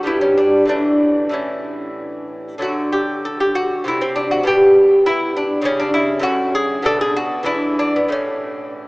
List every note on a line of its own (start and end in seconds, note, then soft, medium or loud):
0.03 0.65 G2 soft
0.03 0.66 G3 soft
0.03 0.67 B3 soft
0.03 0.21 E4 medium
0.21 0.37 C#4 medium
0.37 0.68 D4 medium
0.65 1.28 A2 soft
0.65 1.30 E3 soft
0.65 1.31 A3 soft
0.65 1.31 D4 medium
1.29 2.56 A2 soft
1.29 2.57 E3 soft
1.29 2.58 A3 soft
1.33 2.26 C#4 soft
2.58 3.82 D3 soft
2.58 3.82 F#3 soft
2.58 3.83 A3 soft
2.58 2.93 F#4 medium
2.92 3.24 G4 medium
3.25 3.40 A4 medium
3.40 3.57 G4 medium
3.55 3.85 F#4 medium
3.84 4.44 C3 soft
3.84 4.44 F#3 soft
3.84 4.01 A3 soft
3.84 4.03 E4 medium
4.01 4.17 C4 medium
4.16 4.31 D4 medium
4.31 4.47 F#4 medium
4.43 5.60 B2 medium
4.43 5.61 G3 soft
4.43 5.62 B3 soft
4.43 5.05 G4 medium
5.06 5.35 E4 medium
5.37 5.65 D4 medium
5.62 6.21 C#3 medium
5.62 6.20 G3 medium
5.62 5.80 C#4 medium
5.80 5.93 D4 medium
5.94 6.23 E4 medium
6.19 6.82 F#2 medium
6.19 6.82 A3 medium
6.19 6.83 C#4 medium
6.19 6.53 F#4 medium
6.55 6.85 G#4 medium
6.83 7.45 B2 medium
6.83 7.45 A3 medium
6.83 7.16 D4 medium
6.83 7.01 A4 loud
7.01 7.17 G#4 medium
7.16 7.46 F#4 medium
7.43 8.08 E3 medium
7.43 8.09 G#3 soft
7.43 7.78 D4 soft
7.43 7.78 E4 medium
7.79 7.96 D4 medium
7.96 8.12 B3 medium
8.08 8.88 A2 soft
8.08 8.88 A3 soft
8.08 8.88 C#4 medium